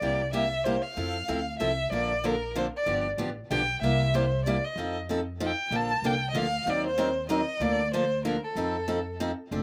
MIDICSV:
0, 0, Header, 1, 4, 480
1, 0, Start_track
1, 0, Key_signature, -2, "major"
1, 0, Tempo, 316623
1, 18, Time_signature, 3, 2, 24, 8
1, 14596, End_track
2, 0, Start_track
2, 0, Title_t, "Violin"
2, 0, Program_c, 0, 40
2, 0, Note_on_c, 0, 74, 83
2, 450, Note_off_c, 0, 74, 0
2, 508, Note_on_c, 0, 76, 85
2, 968, Note_on_c, 0, 72, 74
2, 991, Note_off_c, 0, 76, 0
2, 1241, Note_on_c, 0, 77, 81
2, 1264, Note_off_c, 0, 72, 0
2, 2395, Note_off_c, 0, 77, 0
2, 2404, Note_on_c, 0, 76, 86
2, 2858, Note_off_c, 0, 76, 0
2, 2910, Note_on_c, 0, 74, 86
2, 3411, Note_on_c, 0, 70, 84
2, 3434, Note_off_c, 0, 74, 0
2, 3876, Note_off_c, 0, 70, 0
2, 3899, Note_on_c, 0, 72, 75
2, 4016, Note_off_c, 0, 72, 0
2, 4182, Note_on_c, 0, 74, 84
2, 4609, Note_off_c, 0, 74, 0
2, 5328, Note_on_c, 0, 79, 95
2, 5761, Note_off_c, 0, 79, 0
2, 5788, Note_on_c, 0, 76, 95
2, 6293, Note_on_c, 0, 72, 82
2, 6315, Note_off_c, 0, 76, 0
2, 6737, Note_off_c, 0, 72, 0
2, 6746, Note_on_c, 0, 74, 78
2, 7035, Note_on_c, 0, 75, 74
2, 7057, Note_off_c, 0, 74, 0
2, 7506, Note_off_c, 0, 75, 0
2, 8244, Note_on_c, 0, 79, 85
2, 8730, Note_on_c, 0, 81, 96
2, 8753, Note_off_c, 0, 79, 0
2, 9191, Note_on_c, 0, 79, 90
2, 9213, Note_off_c, 0, 81, 0
2, 9538, Note_off_c, 0, 79, 0
2, 9547, Note_on_c, 0, 75, 71
2, 9658, Note_on_c, 0, 77, 91
2, 9681, Note_off_c, 0, 75, 0
2, 10149, Note_on_c, 0, 74, 91
2, 10171, Note_off_c, 0, 77, 0
2, 10403, Note_off_c, 0, 74, 0
2, 10409, Note_on_c, 0, 72, 88
2, 11026, Note_off_c, 0, 72, 0
2, 11054, Note_on_c, 0, 75, 82
2, 11542, Note_on_c, 0, 74, 93
2, 11565, Note_off_c, 0, 75, 0
2, 12019, Note_off_c, 0, 74, 0
2, 12038, Note_on_c, 0, 72, 84
2, 12474, Note_off_c, 0, 72, 0
2, 12507, Note_on_c, 0, 70, 75
2, 12763, Note_off_c, 0, 70, 0
2, 12791, Note_on_c, 0, 69, 77
2, 13883, Note_off_c, 0, 69, 0
2, 14596, End_track
3, 0, Start_track
3, 0, Title_t, "Steel-string acoustic guitar"
3, 0, Program_c, 1, 25
3, 30, Note_on_c, 1, 48, 56
3, 34, Note_on_c, 1, 55, 57
3, 34, Note_on_c, 1, 58, 58
3, 44, Note_on_c, 1, 67, 68
3, 45, Note_on_c, 1, 64, 69
3, 320, Note_off_c, 1, 48, 0
3, 322, Note_off_c, 1, 55, 0
3, 322, Note_off_c, 1, 58, 0
3, 327, Note_off_c, 1, 67, 0
3, 328, Note_off_c, 1, 64, 0
3, 500, Note_on_c, 1, 48, 68
3, 501, Note_on_c, 1, 55, 79
3, 509, Note_on_c, 1, 58, 75
3, 509, Note_on_c, 1, 64, 82
3, 515, Note_on_c, 1, 67, 91
3, 659, Note_off_c, 1, 48, 0
3, 660, Note_off_c, 1, 55, 0
3, 664, Note_off_c, 1, 58, 0
3, 664, Note_off_c, 1, 64, 0
3, 667, Note_off_c, 1, 67, 0
3, 990, Note_on_c, 1, 55, 72
3, 992, Note_on_c, 1, 48, 72
3, 1002, Note_on_c, 1, 67, 75
3, 1003, Note_on_c, 1, 58, 77
3, 1007, Note_on_c, 1, 64, 81
3, 1145, Note_off_c, 1, 55, 0
3, 1146, Note_off_c, 1, 48, 0
3, 1151, Note_off_c, 1, 58, 0
3, 1151, Note_off_c, 1, 67, 0
3, 1153, Note_off_c, 1, 64, 0
3, 1466, Note_on_c, 1, 53, 56
3, 1468, Note_on_c, 1, 60, 54
3, 1478, Note_on_c, 1, 64, 64
3, 1481, Note_on_c, 1, 69, 61
3, 1759, Note_off_c, 1, 53, 0
3, 1760, Note_off_c, 1, 60, 0
3, 1765, Note_off_c, 1, 64, 0
3, 1767, Note_off_c, 1, 69, 0
3, 1940, Note_on_c, 1, 53, 67
3, 1947, Note_on_c, 1, 60, 69
3, 1953, Note_on_c, 1, 64, 76
3, 1957, Note_on_c, 1, 69, 87
3, 2100, Note_off_c, 1, 53, 0
3, 2104, Note_off_c, 1, 60, 0
3, 2107, Note_off_c, 1, 64, 0
3, 2109, Note_off_c, 1, 69, 0
3, 2424, Note_on_c, 1, 53, 80
3, 2430, Note_on_c, 1, 60, 76
3, 2436, Note_on_c, 1, 69, 81
3, 2440, Note_on_c, 1, 64, 79
3, 2582, Note_off_c, 1, 53, 0
3, 2586, Note_off_c, 1, 60, 0
3, 2588, Note_off_c, 1, 69, 0
3, 2590, Note_off_c, 1, 64, 0
3, 2910, Note_on_c, 1, 50, 57
3, 2916, Note_on_c, 1, 53, 62
3, 2925, Note_on_c, 1, 58, 62
3, 2928, Note_on_c, 1, 62, 64
3, 2929, Note_on_c, 1, 69, 62
3, 3201, Note_off_c, 1, 50, 0
3, 3205, Note_off_c, 1, 53, 0
3, 3209, Note_off_c, 1, 58, 0
3, 3210, Note_off_c, 1, 62, 0
3, 3211, Note_off_c, 1, 69, 0
3, 3391, Note_on_c, 1, 50, 73
3, 3393, Note_on_c, 1, 53, 75
3, 3399, Note_on_c, 1, 58, 79
3, 3402, Note_on_c, 1, 62, 76
3, 3411, Note_on_c, 1, 69, 81
3, 3546, Note_off_c, 1, 50, 0
3, 3547, Note_off_c, 1, 53, 0
3, 3550, Note_off_c, 1, 58, 0
3, 3551, Note_off_c, 1, 62, 0
3, 3556, Note_off_c, 1, 69, 0
3, 3873, Note_on_c, 1, 53, 82
3, 3874, Note_on_c, 1, 50, 77
3, 3882, Note_on_c, 1, 58, 85
3, 3886, Note_on_c, 1, 62, 83
3, 3887, Note_on_c, 1, 69, 88
3, 4027, Note_off_c, 1, 53, 0
3, 4028, Note_off_c, 1, 50, 0
3, 4031, Note_off_c, 1, 58, 0
3, 4033, Note_off_c, 1, 62, 0
3, 4034, Note_off_c, 1, 69, 0
3, 4338, Note_on_c, 1, 50, 64
3, 4344, Note_on_c, 1, 53, 64
3, 4348, Note_on_c, 1, 59, 64
3, 4351, Note_on_c, 1, 67, 62
3, 4352, Note_on_c, 1, 62, 62
3, 4635, Note_off_c, 1, 50, 0
3, 4638, Note_off_c, 1, 53, 0
3, 4640, Note_off_c, 1, 59, 0
3, 4642, Note_off_c, 1, 62, 0
3, 4642, Note_off_c, 1, 67, 0
3, 4824, Note_on_c, 1, 50, 71
3, 4827, Note_on_c, 1, 53, 74
3, 4833, Note_on_c, 1, 59, 81
3, 4838, Note_on_c, 1, 62, 83
3, 4840, Note_on_c, 1, 67, 89
3, 4982, Note_off_c, 1, 50, 0
3, 4983, Note_off_c, 1, 53, 0
3, 4987, Note_off_c, 1, 59, 0
3, 4989, Note_off_c, 1, 62, 0
3, 4990, Note_off_c, 1, 67, 0
3, 5316, Note_on_c, 1, 50, 82
3, 5318, Note_on_c, 1, 53, 74
3, 5326, Note_on_c, 1, 62, 85
3, 5328, Note_on_c, 1, 67, 98
3, 5330, Note_on_c, 1, 59, 87
3, 5468, Note_off_c, 1, 50, 0
3, 5469, Note_off_c, 1, 53, 0
3, 5473, Note_off_c, 1, 62, 0
3, 5474, Note_off_c, 1, 67, 0
3, 5475, Note_off_c, 1, 59, 0
3, 5809, Note_on_c, 1, 48, 65
3, 5815, Note_on_c, 1, 58, 68
3, 5816, Note_on_c, 1, 55, 69
3, 5818, Note_on_c, 1, 64, 60
3, 5822, Note_on_c, 1, 67, 70
3, 6090, Note_off_c, 1, 48, 0
3, 6093, Note_off_c, 1, 55, 0
3, 6093, Note_off_c, 1, 58, 0
3, 6095, Note_off_c, 1, 64, 0
3, 6096, Note_off_c, 1, 67, 0
3, 6276, Note_on_c, 1, 48, 77
3, 6281, Note_on_c, 1, 55, 80
3, 6282, Note_on_c, 1, 58, 82
3, 6288, Note_on_c, 1, 64, 78
3, 6288, Note_on_c, 1, 67, 92
3, 6427, Note_off_c, 1, 48, 0
3, 6430, Note_off_c, 1, 55, 0
3, 6431, Note_off_c, 1, 58, 0
3, 6434, Note_off_c, 1, 64, 0
3, 6434, Note_off_c, 1, 67, 0
3, 6763, Note_on_c, 1, 48, 80
3, 6775, Note_on_c, 1, 55, 87
3, 6780, Note_on_c, 1, 58, 84
3, 6781, Note_on_c, 1, 64, 94
3, 6782, Note_on_c, 1, 67, 91
3, 6911, Note_off_c, 1, 48, 0
3, 6917, Note_off_c, 1, 55, 0
3, 6919, Note_off_c, 1, 58, 0
3, 6920, Note_off_c, 1, 64, 0
3, 6920, Note_off_c, 1, 67, 0
3, 7237, Note_on_c, 1, 53, 61
3, 7245, Note_on_c, 1, 60, 60
3, 7253, Note_on_c, 1, 63, 67
3, 7262, Note_on_c, 1, 69, 65
3, 7524, Note_off_c, 1, 53, 0
3, 7527, Note_off_c, 1, 60, 0
3, 7531, Note_off_c, 1, 63, 0
3, 7536, Note_off_c, 1, 69, 0
3, 7720, Note_on_c, 1, 53, 81
3, 7730, Note_on_c, 1, 60, 77
3, 7738, Note_on_c, 1, 63, 79
3, 7744, Note_on_c, 1, 69, 91
3, 7869, Note_off_c, 1, 53, 0
3, 7874, Note_off_c, 1, 60, 0
3, 7878, Note_off_c, 1, 63, 0
3, 7881, Note_off_c, 1, 69, 0
3, 8193, Note_on_c, 1, 53, 83
3, 8193, Note_on_c, 1, 60, 86
3, 8199, Note_on_c, 1, 63, 84
3, 8206, Note_on_c, 1, 69, 81
3, 8345, Note_off_c, 1, 53, 0
3, 8345, Note_off_c, 1, 60, 0
3, 8348, Note_off_c, 1, 63, 0
3, 8352, Note_off_c, 1, 69, 0
3, 8663, Note_on_c, 1, 50, 57
3, 8675, Note_on_c, 1, 53, 61
3, 8675, Note_on_c, 1, 62, 64
3, 8676, Note_on_c, 1, 58, 68
3, 8686, Note_on_c, 1, 69, 71
3, 8956, Note_off_c, 1, 50, 0
3, 8962, Note_off_c, 1, 53, 0
3, 8962, Note_off_c, 1, 58, 0
3, 8962, Note_off_c, 1, 62, 0
3, 8967, Note_off_c, 1, 69, 0
3, 9155, Note_on_c, 1, 50, 70
3, 9158, Note_on_c, 1, 53, 74
3, 9161, Note_on_c, 1, 58, 90
3, 9171, Note_on_c, 1, 62, 87
3, 9171, Note_on_c, 1, 69, 81
3, 9306, Note_off_c, 1, 50, 0
3, 9307, Note_off_c, 1, 53, 0
3, 9309, Note_off_c, 1, 58, 0
3, 9314, Note_off_c, 1, 62, 0
3, 9314, Note_off_c, 1, 69, 0
3, 9619, Note_on_c, 1, 50, 73
3, 9621, Note_on_c, 1, 53, 84
3, 9621, Note_on_c, 1, 58, 79
3, 9632, Note_on_c, 1, 62, 78
3, 9633, Note_on_c, 1, 69, 89
3, 9778, Note_off_c, 1, 50, 0
3, 9779, Note_off_c, 1, 53, 0
3, 9779, Note_off_c, 1, 58, 0
3, 9784, Note_off_c, 1, 62, 0
3, 9785, Note_off_c, 1, 69, 0
3, 10108, Note_on_c, 1, 51, 61
3, 10110, Note_on_c, 1, 60, 68
3, 10111, Note_on_c, 1, 54, 67
3, 10116, Note_on_c, 1, 63, 65
3, 10119, Note_on_c, 1, 70, 70
3, 10398, Note_off_c, 1, 51, 0
3, 10399, Note_off_c, 1, 54, 0
3, 10399, Note_off_c, 1, 60, 0
3, 10402, Note_off_c, 1, 63, 0
3, 10404, Note_off_c, 1, 70, 0
3, 10577, Note_on_c, 1, 54, 87
3, 10578, Note_on_c, 1, 51, 81
3, 10584, Note_on_c, 1, 60, 77
3, 10590, Note_on_c, 1, 63, 96
3, 10592, Note_on_c, 1, 70, 95
3, 10736, Note_off_c, 1, 54, 0
3, 10737, Note_off_c, 1, 51, 0
3, 10740, Note_off_c, 1, 60, 0
3, 10743, Note_off_c, 1, 63, 0
3, 10744, Note_off_c, 1, 70, 0
3, 11051, Note_on_c, 1, 51, 87
3, 11062, Note_on_c, 1, 54, 85
3, 11064, Note_on_c, 1, 60, 89
3, 11068, Note_on_c, 1, 63, 90
3, 11073, Note_on_c, 1, 70, 88
3, 11213, Note_off_c, 1, 51, 0
3, 11219, Note_off_c, 1, 54, 0
3, 11220, Note_off_c, 1, 60, 0
3, 11222, Note_off_c, 1, 63, 0
3, 11224, Note_off_c, 1, 70, 0
3, 11530, Note_on_c, 1, 53, 60
3, 11532, Note_on_c, 1, 50, 58
3, 11541, Note_on_c, 1, 58, 64
3, 11543, Note_on_c, 1, 62, 68
3, 11543, Note_on_c, 1, 69, 74
3, 11829, Note_off_c, 1, 50, 0
3, 11829, Note_off_c, 1, 53, 0
3, 11834, Note_off_c, 1, 58, 0
3, 11835, Note_off_c, 1, 62, 0
3, 11835, Note_off_c, 1, 69, 0
3, 12027, Note_on_c, 1, 50, 71
3, 12031, Note_on_c, 1, 53, 79
3, 12036, Note_on_c, 1, 58, 88
3, 12040, Note_on_c, 1, 62, 86
3, 12042, Note_on_c, 1, 69, 86
3, 12182, Note_off_c, 1, 50, 0
3, 12183, Note_off_c, 1, 53, 0
3, 12186, Note_off_c, 1, 58, 0
3, 12188, Note_off_c, 1, 62, 0
3, 12189, Note_off_c, 1, 69, 0
3, 12505, Note_on_c, 1, 50, 79
3, 12506, Note_on_c, 1, 58, 86
3, 12508, Note_on_c, 1, 62, 78
3, 12510, Note_on_c, 1, 53, 78
3, 12511, Note_on_c, 1, 69, 89
3, 12660, Note_off_c, 1, 50, 0
3, 12661, Note_off_c, 1, 58, 0
3, 12662, Note_off_c, 1, 62, 0
3, 12663, Note_off_c, 1, 53, 0
3, 12663, Note_off_c, 1, 69, 0
3, 12984, Note_on_c, 1, 53, 63
3, 12990, Note_on_c, 1, 60, 72
3, 12993, Note_on_c, 1, 63, 71
3, 13007, Note_on_c, 1, 69, 72
3, 13276, Note_off_c, 1, 53, 0
3, 13279, Note_off_c, 1, 60, 0
3, 13280, Note_off_c, 1, 63, 0
3, 13287, Note_off_c, 1, 69, 0
3, 13458, Note_on_c, 1, 53, 68
3, 13459, Note_on_c, 1, 60, 76
3, 13466, Note_on_c, 1, 63, 85
3, 13472, Note_on_c, 1, 69, 85
3, 13617, Note_off_c, 1, 53, 0
3, 13617, Note_off_c, 1, 60, 0
3, 13621, Note_off_c, 1, 63, 0
3, 13624, Note_off_c, 1, 69, 0
3, 13950, Note_on_c, 1, 60, 91
3, 13955, Note_on_c, 1, 53, 82
3, 13962, Note_on_c, 1, 63, 82
3, 13964, Note_on_c, 1, 69, 89
3, 14103, Note_off_c, 1, 60, 0
3, 14106, Note_off_c, 1, 53, 0
3, 14109, Note_off_c, 1, 63, 0
3, 14110, Note_off_c, 1, 69, 0
3, 14427, Note_on_c, 1, 53, 51
3, 14434, Note_on_c, 1, 60, 66
3, 14435, Note_on_c, 1, 62, 70
3, 14442, Note_on_c, 1, 69, 68
3, 14596, Note_off_c, 1, 53, 0
3, 14596, Note_off_c, 1, 60, 0
3, 14596, Note_off_c, 1, 62, 0
3, 14596, Note_off_c, 1, 69, 0
3, 14596, End_track
4, 0, Start_track
4, 0, Title_t, "Upright bass"
4, 0, Program_c, 2, 32
4, 18, Note_on_c, 2, 36, 75
4, 1171, Note_off_c, 2, 36, 0
4, 1468, Note_on_c, 2, 41, 77
4, 1849, Note_off_c, 2, 41, 0
4, 1950, Note_on_c, 2, 38, 67
4, 2354, Note_off_c, 2, 38, 0
4, 2429, Note_on_c, 2, 36, 67
4, 2833, Note_off_c, 2, 36, 0
4, 2901, Note_on_c, 2, 34, 78
4, 4053, Note_off_c, 2, 34, 0
4, 4340, Note_on_c, 2, 31, 77
4, 4724, Note_off_c, 2, 31, 0
4, 4811, Note_on_c, 2, 33, 73
4, 5223, Note_off_c, 2, 33, 0
4, 5308, Note_on_c, 2, 35, 73
4, 5712, Note_off_c, 2, 35, 0
4, 5781, Note_on_c, 2, 36, 90
4, 6932, Note_off_c, 2, 36, 0
4, 7212, Note_on_c, 2, 41, 84
4, 8366, Note_off_c, 2, 41, 0
4, 8650, Note_on_c, 2, 34, 80
4, 9037, Note_off_c, 2, 34, 0
4, 9128, Note_on_c, 2, 36, 71
4, 9540, Note_off_c, 2, 36, 0
4, 9602, Note_on_c, 2, 38, 76
4, 10016, Note_off_c, 2, 38, 0
4, 10098, Note_on_c, 2, 39, 81
4, 11249, Note_off_c, 2, 39, 0
4, 11520, Note_on_c, 2, 38, 89
4, 12678, Note_off_c, 2, 38, 0
4, 12969, Note_on_c, 2, 41, 83
4, 14124, Note_off_c, 2, 41, 0
4, 14421, Note_on_c, 2, 29, 78
4, 14596, Note_off_c, 2, 29, 0
4, 14596, End_track
0, 0, End_of_file